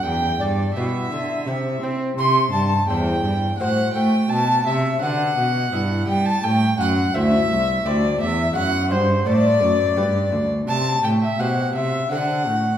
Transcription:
X:1
M:3/4
L:1/16
Q:1/4=85
K:Clyd
V:1 name="Flute"
g2 d2 e6- e z | c'2 a2 g4 f2 g2 | a2 e2 f6 g a | g2 f2 e4 d2 e2 |
f2 c2 d6- d z | a2 g e f2 e2 f4 |]
V:2 name="Violin"
g2 d2 e6- e z | c'2 a2 g4 f2 g2 | a2 e2 f6 g a | g2 f2 e4 d2 e2 |
f2 c2 d6- d z | a2 g e f2 e2 f4 |]
V:3 name="Lute"
z4 [B,EG]4 [CEG]4 | z4 [CEc]4 [CFc]4 | z4 [B,Fd]4 [B,Ee]4 | z4 [CEc]4 [CEc]4 |
z4 [DAc]4 [DGB]4 | z4 [CGc]4 [CDA]4 |]
V:4 name="Lute" clef=bass
E,,2 G,,2 B,,2 D,2 C,2 C2 | C,2 G,,2 E,,2 z2 A,,2 A,2 | B,,2 C,2 D,2 B,,2 G,,2 G,2 | A,,2 F,,2 D,,2 z2 D,,2 E,,2 |
F,,2 G,,2 A,,2 F,,2 G,,2 D,,2 | C,2 A,,2 B,,2 C,2 D,2 A,,2 |]
V:5 name="Cello" clef=bass
E,,2 G,,2 B,,2 D,2 C,2 C2 | C,2 G,,2 E,,2 G,,2 A,,2 A,2 | B,,2 C,2 D,2 B,,2 G,,2 G,2 | A,,2 F,,2 D,,2 C,,2 D,,2 E,,2 |
F,,2 G,,2 A,,2 F,,2 G,,2 D,,2 | C,2 A,,2 B,,2 C,2 D,2 A,,2 |]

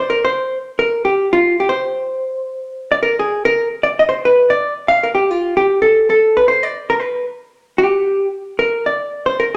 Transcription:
X:1
M:4/4
L:1/8
Q:"Swing" 1/4=226
K:Gphr
V:1 name="Hollow-body jazz guitar"
B c3 z B2 G- | G F2 G c4- | c4- c d B A- | A B2 z d e c =B- |
=B d2 z f _B G F- | F G2 =A2 A2 =B | c d2 B =B2 z2 | z2 G4 z2 |
B2 d3 c B z |]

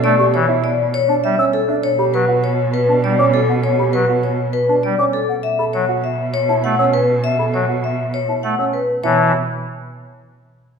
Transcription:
X:1
M:3/4
L:1/16
Q:1/4=100
K:Bm
V:1 name="Flute"
z c' z4 z a z e' z e | z b z4 z a z d' z f | z b z4 z a z d' z f | z b z4 z a z e' z2 |
z b z4 z a z e' z2 | a2 z8 z2 |]
V:2 name="Vibraphone"
d z c z d z c z e z A z | c z B z c z B z d z A z | c z B z c z B z d z A z | e z c z e z c z f z B z |
e z c z e z c z f z B z | c2 z8 z2 |]
V:3 name="Grand piano"
z G z E z3 D z C z D | z G z F z3 D z C z2 | z G z F z3 D z C z2 | z A z F z3 E z C z2 |
z A z F z3 E z C z2 | E2 z8 z2 |]
V:4 name="Pipe organ" clef=bass
A, z E, z4 z G, z3 | z2 F, z4 z G, z3 | z2 F, z4 z G, z3 | z2 F, z4 z A, z3 |
z2 F, z4 z A, z3 | E,2 z8 z2 |]
V:5 name="Cello" clef=bass
B,,12 | B,,12- | B,,12 | B,,12- |
B,,12 | B,,2 z8 z2 |]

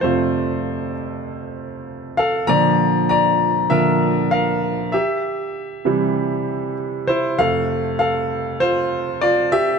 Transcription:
X:1
M:4/4
L:1/8
Q:1/4=98
K:F
V:1 name="Grand piano"
[Fc]3 z4 [Af] | [db]2 [db]2 [Be]2 [Bf]2 | [Ge]3 z4 [Ec] | [Af]2 [Af]2 [Fc]2 [Fd] [Ge] |]
V:2 name="Grand piano" clef=bass
[F,,C,A,]8 | [B,,D,F,]3 z [B,,D,F,] z3 | z3 [C,E,G,]3 z2 | [F,,C,A,] z6 z |]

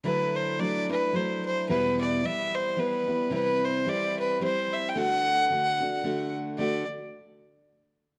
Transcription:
X:1
M:3/4
L:1/16
Q:"Swing" 1/4=110
K:Dmix
V:1 name="Fiddle"
B2 c2 d2 B2 c2 c2 | B2 d2 e2 c2 B4 | B2 c2 d2 B2 c2 e3/2 g/2 | f8- f2 z2 |
d2 z8 z2 |]
V:2 name="Steel-string acoustic guitar"
[D,F,A,DE]4 [F,A,DE]2 [A,DE]2 [F,A,DE]4 | [E,,B,,E,G,B,E]4 [E,G,B,E]4 [E,G,B,E]2 [E,G,B,E]2 | [C,E,G,CE]4 [E,G,CE]4 [E,G,CE]4 | [D,A,DF]4 [D,A,DF]2 [A,DF]2 [D,A,DF]4 |
[D,A,DF]2 z8 z2 |]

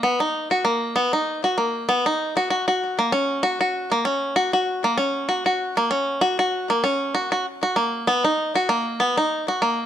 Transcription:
X:1
M:4/4
L:1/16
Q:"Swing 16ths" 1/4=97
K:F#
V:1 name="Five-string banjo"
B, D2 F A,2 B, D2 F A,2 B, D2 F | F F2 A, C2 F F2 A, C2 F F2 A, | C2 F F2 A, C2 F F2 A, C2 F F | z F A,2 B, D2 F A,2 B, D2 F A,2 |]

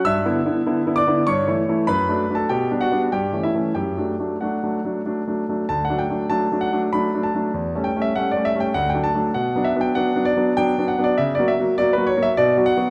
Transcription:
X:1
M:3/4
L:1/16
Q:1/4=98
K:D
V:1 name="Grand piano"
[ee']6 [dd']2 [cc']4 | [Bb]3 [Aa] [Gg]2 [Ff]2 [Gg]2 [Ee]2 | [Gg]4 [Ff]4 z4 | a f g2 a2 f2 b2 a2- |
a2 g e f d e g f g a2 | f2 e g f2 d2 g2 f d | e d e2 d B c e d2 f2 |]
V:2 name="Grand piano"
(3G,,2 [D,B,E]2 [D,B,E]2 (3[D,B,E]2 [D,B,E]2 [D,B,E]2 (3G,,2 [E,A,E]2 [E,A,E]2 | (3F,,2 [F,A,D]2 [F,A,D]2 (3B,,2 [G,B,D]2 [G,B,D]2 (3G,,2 [E,A,C]2 [E,A,C]2 | (3F,,2 [F,A,D]2 [F,A,D]2 (3[F,A,D]2 [F,A,D]2 [F,A,D]2 (3[F,A,D]2 [F,A,D]2 [F,A,D]2 | (3D,,2 [F,A,D]2 [F,A,D]2 (3[F,A,D]2 [F,A,D]2 [F,A,D]2 (3[F,A,D]2 [F,A,D]2 [F,A,D]2 |
(3E,,2 [G,A,C]2 [G,A,C]2 (3[G,A,C]2 [G,A,C]2 [G,A,C]2 (3D,,2 [F,A,D]2 [F,A,D]2 | (3B,,2 [F,B,D]2 [F,B,D]2 (3[F,B,D]2 [F,B,D]2 [F,B,D]2 (3[F,B,D]2 [F,B,D]2 [F,B,D]2 | (3C,2 [F,^A,F]2 [F,A,F]2 (3[F,A,F]2 [F,A,F]2 [F,A,F]2 (3B,,2 [F,B,F]2 [F,B,F]2 |]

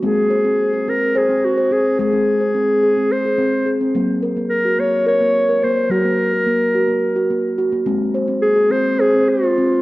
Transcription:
X:1
M:7/8
L:1/16
Q:1/4=107
K:Abmix
V:1 name="Clarinet"
A6 B2 A2 G2 A2 | A8 c4 z2 | z4 B2 d2 d4 c2 | B12 z2 |
z4 A2 c2 A2 F4 |]
V:2 name="Steel tongue drum"
C2 c C2 A C2 c C2 c C2 | A C2 c C2 A C2 A C2 A C | B,2 B B,2 G B,2 B B,2 B B,2 | G B,2 B B,2 G B,2 G B,2 G B, |
C2 c C2 A C2 c C2 c C2 |]
V:3 name="Steel tongue drum" clef=bass
A,12- A,2 | A,12- A,2 | G,12- G,2 | G,12- G,2 |
A,12- A,2 |]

